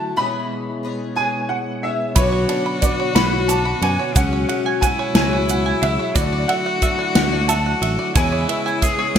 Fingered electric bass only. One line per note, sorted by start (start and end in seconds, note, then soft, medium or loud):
2.16 2.45 B1 loud
3.15 3.73 B1 loud
3.82 3.96 F#2 medium
4.16 4.45 C#2 loud
5.15 5.73 C#2 loud
5.82 5.97 C#2 loud
6.15 6.44 D2 loud
7.16 7.73 D2 loud
7.82 7.96 A1 medium
8.16 8.44 E2 loud
9.15 9.19 E2 loud